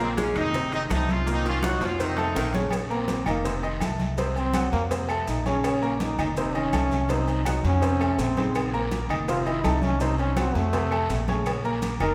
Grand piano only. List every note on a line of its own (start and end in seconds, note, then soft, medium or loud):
0.00 0.29 A#3 medium
0.00 0.30 A#4 medium
0.00 0.30 A#5 medium
0.37 0.51 D#3 medium
0.37 0.52 D#4 medium
0.37 0.52 D#5 medium
0.54 0.69 C3 medium
0.54 0.70 C4 medium
0.54 0.70 C5 medium
0.72 0.87 D#3 medium
0.72 0.88 D#4 medium
0.72 0.88 D#5 medium
0.90 1.20 A3 medium
0.90 1.21 A4 medium
0.90 1.21 A5 medium
1.26 1.56 A#2 medium
1.26 1.57 A#3 medium
1.26 1.57 A#4 medium
1.63 1.93 F#3 medium
1.63 1.94 F#4 medium
1.63 1.94 F#5 medium
2.00 2.15 C3 medium
2.00 2.15 C4 medium
2.00 2.15 C5 medium
2.17 2.47 A3 medium
2.17 2.48 A4 medium
2.17 2.48 A5 medium
2.54 2.69 C#3 medium
2.54 2.69 C#4 medium
2.54 2.69 C#5 medium
2.90 3.20 A#3 medium
2.90 3.21 A#4 medium
2.90 3.21 A#5 medium
3.27 3.42 D#3 medium
3.27 3.42 D#4 medium
3.27 3.42 D#5 medium
3.44 3.60 C3 medium
3.44 3.60 C4 medium
3.44 3.60 C5 medium
3.63 3.78 D#3 medium
3.63 3.78 D#4 medium
3.63 3.78 D#5 medium
3.81 4.11 A3 medium
3.81 4.12 A4 medium
3.81 4.12 A5 medium
4.18 4.48 C3 medium
4.18 4.48 C4 medium
4.18 4.48 C5 medium
4.55 4.85 F#3 medium
4.55 4.85 F#4 medium
4.55 4.85 F#5 medium
4.91 5.06 C3 medium
4.91 5.06 C4 medium
4.91 5.06 C5 medium
5.10 5.39 A3 medium
5.10 5.40 A4 medium
5.10 5.40 A5 medium
5.46 5.76 C#3 medium
5.46 5.76 C#4 medium
5.46 5.76 C#5 medium
5.82 6.12 A#3 medium
5.82 6.12 A#4 medium
5.82 6.12 A#5 medium
6.19 6.34 D#3 medium
6.19 6.34 D#4 medium
6.19 6.34 D#5 medium
6.37 6.52 C3 medium
6.37 6.52 C4 medium
6.37 6.52 C5 medium
6.55 6.70 D#3 medium
6.55 6.70 D#4 medium
6.55 6.70 D#5 medium
6.73 7.03 A3 medium
6.73 7.03 A4 medium
6.73 7.04 A5 medium
7.09 7.39 C3 medium
7.09 7.39 C4 medium
7.09 7.39 C5 medium
7.45 7.75 F#3 medium
7.45 7.76 F#4 medium
7.45 7.76 F#5 medium
7.81 7.97 C3 medium
7.81 7.97 C4 medium
7.81 7.97 C5 medium
8.00 8.30 A3 medium
8.00 8.30 A4 medium
8.00 8.30 A5 medium
8.37 8.67 C#3 medium
8.37 8.67 D#4 medium
8.37 8.67 C5 medium
8.73 9.03 A#3 medium
8.73 9.04 A#4 medium
8.73 9.04 A#5 medium
9.10 9.25 D#3 medium
9.10 9.25 D#4 medium
9.10 9.25 D#5 medium
9.28 9.43 C3 medium
9.28 9.43 C4 medium
9.28 9.43 C5 medium
9.46 9.61 D#3 medium
9.46 9.61 D#4 medium
9.46 9.61 D#5 medium
9.64 9.94 A3 medium
9.64 9.94 A4 medium
9.64 9.94 A5 medium
10.01 10.30 C3 medium
10.01 10.31 C4 medium
10.01 10.31 C5 medium
10.36 10.66 F#3 medium
10.36 10.67 F#4 medium
10.36 10.67 F#5 medium
10.73 10.88 C3 medium
10.73 10.88 C4 medium
10.73 10.89 C5 medium
10.91 11.21 A3 medium
10.91 11.21 A4 medium
10.91 11.22 A5 medium
11.28 11.58 C#3 medium
11.28 11.58 C#4 medium
11.28 11.58 C#5 medium
11.65 11.94 A#3 medium
11.65 11.94 A#4 medium
11.65 11.95 A#5 medium
12.01 12.14 D#3 medium
12.01 12.14 D#4 medium
12.01 12.14 D#5 medium